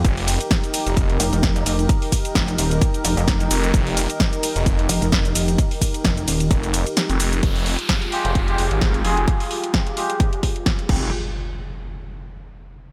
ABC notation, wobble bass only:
X:1
M:4/4
L:1/16
Q:"Swing 16ths" 1/4=130
K:Fm
V:1 name="Wobble bass" clef=bass
z8 z2 F,,, F,,,3 F,,,2 | z4 F,,,2 E,,,2 z2 F,,, F,,,3 z2 | z8 z2 F,,, F,,,3 F,,,2 | z4 F,,,2 E,,,2 z8 |
z16 | z16 | z16 |]